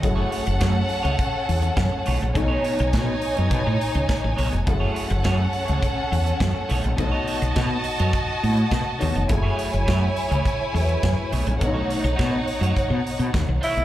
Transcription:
<<
  \new Staff \with { instrumentName = "Violin section" } { \time 4/4 \key fis \dorian \tempo 4 = 104 <cis' a' fis''>1 | <dis' cis'' gis''>1 | <cis' a' fis''>1 | <fis' dis'' a''>1 |
<e' cis'' gis''>1 | <dis' cis'' fis''>1 | }
  \new Staff \with { instrumentName = "Clean electric guitar" } { \time 4/4 \key fis \dorian r16 <a e' gis' cis''>16 <a e' gis' cis''>16 r16 <a e' gis' cis''>16 r8 <a e' gis' cis''>16 r4. <a e' gis' cis''>16 r16 | r16 <b dis' a' cis''>16 <b dis' a' cis''>16 r16 <b dis' a' cis''>16 r8 <b dis' a' cis''>16 r4. <b dis' a' cis''>16 r16 | r16 <a e' gis' cis''>16 <a e' gis' cis''>16 r16 <a e' gis' cis''>16 r8 <a e' gis' cis''>16 r4. <a e' gis' cis''>16 r16 | r16 <b dis' a' cis''>16 <b dis' a' cis''>16 r16 <b dis' a' cis''>16 r8 <b dis' a' cis''>16 r4. <b dis' a' cis''>16 r16 |
r16 <a e' gis' cis''>16 <a e' gis' cis''>16 r16 <a e' gis' cis''>16 r8 <a e' gis' cis''>16 r4. <a e' gis' cis''>16 r16 | r16 <a dis' fis' cis''>16 <a dis' fis' cis''>16 r16 <a dis' fis' cis''>16 r8 <a dis' fis' cis''>16 r4. <a dis' fis' cis''>16 r16 | }
  \new Staff \with { instrumentName = "Grand piano" } { \time 4/4 \key fis \dorian <fis e' gis' a'>1 | <b, a dis' cis''>1 | <fis e' gis' a'>1 | <b, a dis' bis' cis''>2.~ <b, a dis' bis' cis''>8 <b, a dis' cis''>8 |
<fis e' gis' a'>2~ <fis e' gis' a'>8 <fis e' gis' a' b'>4. | <b, a d' dis' cis''>1 | }
  \new Staff \with { instrumentName = "Tenor saxophone" } { \time 4/4 \key fis \dorian r1 | r1 | r1 | r1 |
r1 | r2. r8 e'8 | }
  \new Staff \with { instrumentName = "Fretless electric bass" } { \clef bass \time 4/4 \key fis \dorian fis,,8 r16 fis,,16 fis,8 r16 cis,16 r8 e,8 fis,16 r16 b,,16 ais,,16 | b,,8 r16 b,,16 b,8 r16 fis,16 b,16 a,16 r16 cis,16 r16 a,,16 b,,16 eis,,16 | fis,,8 r16 fis,,16 fis,8 r16 cis,16 r8 e,8 fis,16 r16 b,,16 ais,,16 | b,,8 r16 b,,16 b,8 r16 fis,16 r8 a,8 b,16 r16 dis,16 eis,,16 |
fis,,8 r16 fis,,16 fis,8 r16 cis,16 r8 e,8 fis,16 r16 b,,16 ais,,16 | b,,8 r16 b,,16 b,8 r16 fis,16 r16 b,16 r16 b,16 dis,16 b,,16 r16 b,,16 | }
  \new DrumStaff \with { instrumentName = "Drums" } \drummode { \time 4/4 <hh bd>8 hho16 hh16 <hh bd sn>8 hho16 hh16 <hh bd>8 hho16 hh16 <hh bd sn>8 hho16 hh16 | <hh bd>8 hho16 hh16 <hh bd sn>8 hho16 hh16 <hh bd>8 hho16 hh16 <hh bd sn>8 hho16 hh16 | <hh bd>8 hho16 hh16 <hh bd sn>8 hho16 hh16 <hh bd>8 hho16 hh16 <hh bd sn>8 hho16 hh16 | <hh bd>8 hho16 hh16 <hh bd sn>8 hho16 hh16 <hh bd>8 hho16 hh16 <hh bd sn>8 hho16 hh16 |
<hh bd>8 hho16 hh16 <hh bd sn>8 hho16 hh16 <hh bd>8 hho16 hh16 <hh bd sn>8 hho16 hh16 | <hh bd>8 hho16 hh16 <hh bd sn>8 hho16 hh16 <hh bd>8 hho16 hh16 <hh bd sn>8 hho16 hh16 | }
>>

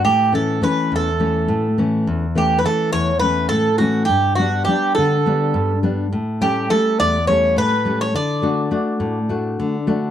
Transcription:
<<
  \new Staff \with { instrumentName = "Bouzouki" } { \time 7/8 \key a \mixolydian \tempo 4 = 104 g'8 a'8 b'8 a'4. r8 | r8 g'16. b'32 a'8 cis''8 b'8 a'8 fis'8 | g'8 fis'8 g'8 a'4. r8 | r8 g'8 a'8 d''8 cis''8 b'8. cis''16 |
d''2. r8 | }
  \new Staff \with { instrumentName = "Nylon-string guitar" } { \time 7/8 \key a \mixolydian a,8 <e a cis'>8 <e a cis'>8 e,8 <e a cis'>8 a,8 <e a cis'>8 | e,8 <e a cis'>8 <e a cis'>8 e,8 <e a cis'>8 a,8 <e a cis'>8 | g,8 <g b d'>8 <g b d'>8 d8 <g b d'>8 g,8 <g b d'>8 | a,8 <g a cis'>8 <g a cis'>8 e,8 <g a cis'>8 a,8 <g a cis'>8 |
d8 <a d' fis'>8 <a d' fis'>8 a,8 <a d' fis'>8 d8 <a d' fis'>8 | }
>>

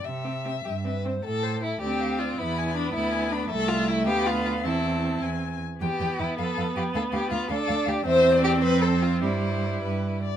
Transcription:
<<
  \new Staff \with { instrumentName = "Violin" } { \time 6/8 \key c \major \tempo 4. = 104 e''2~ e''8 r8 | \key a \minor a'8 c''8 a'8 d''8 f''8 d''8 | b''8 gis''8 b''8 b''8 gis''8 b''8 | e''4. f''4. |
a''4. gis''4 r8 | \key c \major g''8 g''8 g''8 f''8 f''8 f''8 | f''8 f''8 f''8 f''8 f''8 f''8 | e''8. d''8. c''4. |
c''4. b'4 d''8 | }
  \new Staff \with { instrumentName = "Violin" } { \time 6/8 \key c \major r8 g'8 g'8 g'8 b'8 c''8 | \key a \minor a'4 e'8 g'4 f'8 | e'4 d'8 e'4 d'8 | a'8 f'8 e'8 g'8 f'8 f'8 |
e'4. r4. | \key c \major g'4 e'8 a'4 g'8 | a'8 g'8 f'8 a'4 g'8 | c''4 g'8 b'8 a'8 f'8 |
e'2~ e'8 r8 | }
  \new Staff \with { instrumentName = "Viola" } { \time 6/8 \key c \major r8 c'8 c'8 r8 c'8 c'8 | \key a \minor r4. c'4. | b2. | a4. b4. |
c'2~ c'16 r8. | \key c \major b2.~ | b4. d'4. | c'2. |
g2~ g16 r8. | }
  \new Staff \with { instrumentName = "Cello" } { \clef bass \time 6/8 \key c \major c4. g,4. | \key a \minor a,4. d,4. | e,4. d,4. | c,4. d,4. |
e,4. e,4 r8 | \key c \major e,8 e,8 e,8 f,8 f,8 f,8 | d,8 d,8 d,8 d,8 d,8 d,8 | e,4. f,4. |
g,4. g,4 r8 | }
>>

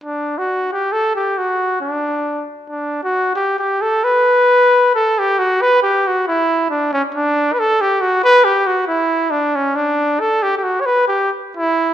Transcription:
\new Staff \with { instrumentName = "Trumpet" } { \time 3/4 \key b \minor \tempo 4 = 136 d'8. fis'8. g'8 a'8 g'8 | fis'4 d'4. r8 | d'8. fis'8. g'8 g'8 a'8 | b'2 a'8 g'8 |
fis'8 b'8 g'8 fis'8 e'4 | d'8 cis'8 d'8.~ d'32 b'32 a'8 g'8 | fis'8 b'8 g'8 fis'8 e'4 | d'8 cis'8 d'4 a'8 g'16. g'32 |
fis'16. cis''32 b'8 g'8 r8 e'4 | }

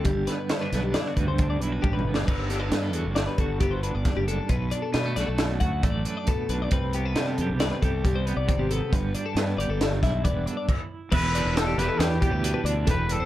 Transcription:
<<
  \new Staff \with { instrumentName = "Clean electric guitar" } { \time 5/4 \key g \major \tempo 4 = 136 g'8 b'8 c''16 b'8 g'16 d''8 b'16 c''8 d''16 b'8 g'16 b'8 d''16 | b'8 g'16 b'8 a'8 r16 d''16 b'16 a'8 g'16 c''16 b'16 d''8 g'16 a'8 | b'8 d''16 a'16 b'8 d''16 a'8 r16 fis''8 d''8 b'16 d''16 a'8 b'16 d''16 | b'8 g'16 b'8 a'8 r16 d''16 b'16 a'8 g'16 c''16 b'16 d''8 g'16 a'8 |
b'8 d''16 a'16 b'8 d''16 a'8 r16 e''8 d''8 b'16 d''16 r4 | b'8 d''8 a'16 g'8 a'16 b'8 g'16 b'8 b'16 d''8 a'16 b'8 c''16 | }
  \new Staff \with { instrumentName = "Trumpet" } { \time 5/4 \key g \major r1 r4 | r1 r4 | r1 r4 | r1 r4 |
r1 r4 | b'4 a'8 b'8 g'8 g'4 r8 b'8 a'8 | }
  \new Staff \with { instrumentName = "Clean electric guitar" } { \time 5/4 \key g \major << { r8 b8 b16 d'16 b8 e'16 fis'8. d'8 e'16 fis'8. b8 | r8 d'8 b8 fis'4 fis'8 b8 d'4 d'8 | r8 d'8 g16 a16 fis'4 fis'8 a8 d'4 d'8 | r8 b8 g8 g'4 g'8 g8 b4 b8~ |
b8 d'8 b8 g'4 e'8 b8 d'8 r4 | e'16 g'16 d'4 g'4 g8 d'8 d'8 g'8 d'8 | } \\ { <g, d>4 d4. g,4. g,4 | g,2 g,2 g,4 | b,2 fis,2 b,4 | c2 c2 c4 |
g,2 g,2 r4 | e,4. e4 b,4. e,4 | } >> }
  \new Staff \with { instrumentName = "Fingered electric bass" } { \clef bass \time 5/4 \key g \major g,,8 r4 b,,8 r8 d,16 d,8. b,,8 a,,8 g,,8 | g,,4 g,8 e,16 g,,8 r16 g,,4~ g,,16 g,,16 r16 fis,,8 r16 | b,,8 r8 b,8 b,,16 b,,8. d,8 a,,8 r4 b,,8 | c,4 c8 fis,16 c,8 r16 c,4~ c,16 c,16 r16 aes,,8 r16 |
g,,8 r8 g,8 g,,16 g,,8. b,,8 e,,8 r4. | e,,8. e,,8. e,,16 r16 e,8 r16 d,8 r16 d,8 e,,8. e,,16 | }
  \new DrumStaff \with { instrumentName = "Drums" } \drummode { \time 5/4 <hh bd>8 <hh sn>8 <hh sn>8 <hh sn>8 <hh sn>8 <hh bd>8 <hh bd>8 hh8 \tuplet 3/2 { <bd tommh>8 toml8 sn8 } | <cymc bd>8 <hh sn>8 <hh sn>8 hh8 <hh sn>8 <hh bd>8 <hh bd>8 hh8 <hh bd sn>8 hh8 | <hh bd>8 hh8 <hh sn>8 <hh sn>8 <hh sn>8 <hh bd>8 <hh bd>8 hh8 <hh bd>8 hh8 | <hh bd>8 hh8 <hh sn>8 hh8 <hh sn>8 <hh bd>8 <hh bd>8 hh8 <hh bd>8 hh8 |
<hh bd>8 hh8 <hh sn>8 hh8 <hh sn>8 <hh bd sn>8 <hh bd>8 hh8 <cymc bd>4 | <cymc bd>8 hh8 <hh sn>8 <hh sn>8 <hh sn>8 <hh bd>8 hh8 hh8 <hh bd>8 hh8 | }
>>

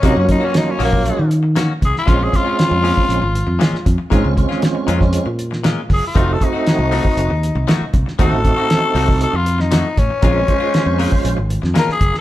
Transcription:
<<
  \new Staff \with { instrumentName = "Tenor saxophone" } { \time 4/4 \key bes \minor \tempo 4 = 118 ees'16 des'16 ees'16 des'16 ees'16 des'16 bes4 r4 aes'16 f'16~ | f'16 aes'16 f'2. r8 | r2. r8 aes'16 f'16~ | f'16 a'16 ees'2. r8 |
a'2 a'16 f'8 ees'8. des'8~ | des'2~ des'8 r8 bes'16 aes'8 r16 | }
  \new Staff \with { instrumentName = "Clean electric guitar" } { \time 4/4 \key bes \minor <ees bes des' ges'>16 r8 <bes des' ges'>16 r8 <ees bes des' ges'>16 r4 r16 <ees bes des' ges'>16 r8. | <bes, aes des' f'>16 r8 <aes des' f'>16 r8 <bes, aes des' f'>16 r4 r16 <bes, aes des' f'>16 r8. | <bes, aes des' f'>16 r8 <aes des' f'>16 r8 <bes, aes des' f'>16 r4 r16 <bes, aes des' f'>16 r8. | <f a ees' ges'>16 r8 <a ees' ges'>16 r8 <f a ees' ges'>16 r4 r16 <f a ees' ges'>16 r8. |
<f a ees' ges'>16 r8 <a ees' ges'>16 r8 <f a ees' ges'>16 r4 r16 <f a ees' ges'>16 r8. | <bes, aes des' f'>16 r8 <aes des' f'>16 r8 <bes, aes des' f'>16 r4 r16 <bes, aes des' f'>16 r8. | }
  \new Staff \with { instrumentName = "Tonewheel organ" } { \time 4/4 \key bes \minor <ges bes des' f'>8 <ges bes des' f'>2 r4. | <aes c' des' f'>8 <aes c' des' f'>2 r4. | <aes c' des' f'>8 <aes c' des' f'>2 r4. | <a c' ees' ges'>8 <a c' ees' ges'>2 r4. |
<a c' ees' ges'>8 <a c' ees' ges'>2 r4. | <aes c' des' f'>8 <aes des' f' c''>2 r4. | }
  \new Staff \with { instrumentName = "Fingered electric bass" } { \clef bass \time 4/4 \key bes \minor c16 ges,8 r8. bes,,8. ees4~ ees16 c,16 r16 | bes,,8 r8. f,8 r16 bes,,16 aes,,8 f,16 r8 f,16 r16 | aes,16 des,8 r8. f,8. bes,4~ bes,16 ges,,16 r16 | f,,8 r8. c,8 r16 f,,16 ees,8 c,16 r8 c,16 r16 |
ees,16 a,,8 r8. c,8. f,4~ f,16 a,,16 r16 | bes,,8 r8. f,8 r16 bes,,16 aes,,8 f,16 r8 ges,,16 r16 | }
  \new DrumStaff \with { instrumentName = "Drums" } \drummode { \time 4/4 <hh bd>8 <hh bd>8 <hh sn>8 hho16 bd16 hh8 hh8 <hh sn>8 <hh bd>16 sn16 | <hh bd>8 <hh bd>8 <hh sn>8 hho16 bd16 hh8 hh8 <hh sn>16 sn16 <hh bd>8 | <hh bd>8 <hh bd>16 sn16 <hh sn>8 hh16 <bd sn>16 hh8 hh16 sn16 <hh sn>8 <hho bd>8 | <hh bd>8 <hh bd>8 <hh sn>8 hho16 bd16 hh8 hh8 <hh sn>8 <hh bd>16 sn16 |
<hh bd>8 <hh bd>8 <hh sn>8 hho16 bd16 hh8 hh16 sn16 <hh sn>8 <hh bd>8 | <hh bd>8 <hh bd>8 <hh sn>8 hho16 bd16 hh8 hh16 sn16 <hh sn>16 sn16 <hh bd>16 sn16 | }
>>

